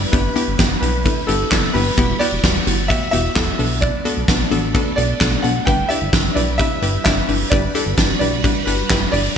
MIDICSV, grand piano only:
0, 0, Header, 1, 2, 480
1, 0, Start_track
1, 0, Tempo, 461538
1, 136, Time_signature, 4, 2, 24, 8
1, 9753, End_track
2, 0, Start_track
2, 0, Title_t, "Grand piano"
2, 0, Program_c, 0, 0
2, 0, Note_on_c, 0, 74, 87
2, 121, Note_on_c, 0, 71, 89
2, 144, Note_off_c, 0, 74, 0
2, 823, Note_off_c, 0, 71, 0
2, 839, Note_on_c, 0, 71, 89
2, 1294, Note_off_c, 0, 71, 0
2, 1320, Note_on_c, 0, 69, 90
2, 1774, Note_off_c, 0, 69, 0
2, 1803, Note_on_c, 0, 71, 106
2, 2281, Note_on_c, 0, 74, 114
2, 2304, Note_off_c, 0, 71, 0
2, 2999, Note_on_c, 0, 76, 101
2, 3031, Note_off_c, 0, 74, 0
2, 3222, Note_off_c, 0, 76, 0
2, 3238, Note_on_c, 0, 76, 111
2, 3961, Note_on_c, 0, 74, 100
2, 3989, Note_off_c, 0, 76, 0
2, 5127, Note_off_c, 0, 74, 0
2, 5158, Note_on_c, 0, 74, 100
2, 5613, Note_off_c, 0, 74, 0
2, 5641, Note_on_c, 0, 78, 101
2, 5880, Note_on_c, 0, 79, 113
2, 5896, Note_off_c, 0, 78, 0
2, 6111, Note_off_c, 0, 79, 0
2, 6121, Note_on_c, 0, 76, 102
2, 6604, Note_on_c, 0, 74, 91
2, 6624, Note_off_c, 0, 76, 0
2, 6833, Note_off_c, 0, 74, 0
2, 6842, Note_on_c, 0, 76, 105
2, 7308, Note_off_c, 0, 76, 0
2, 7324, Note_on_c, 0, 76, 98
2, 7776, Note_off_c, 0, 76, 0
2, 7800, Note_on_c, 0, 74, 103
2, 8506, Note_off_c, 0, 74, 0
2, 8521, Note_on_c, 0, 74, 99
2, 9002, Note_on_c, 0, 71, 92
2, 9024, Note_off_c, 0, 74, 0
2, 9455, Note_off_c, 0, 71, 0
2, 9483, Note_on_c, 0, 74, 109
2, 9753, Note_off_c, 0, 74, 0
2, 9753, End_track
0, 0, End_of_file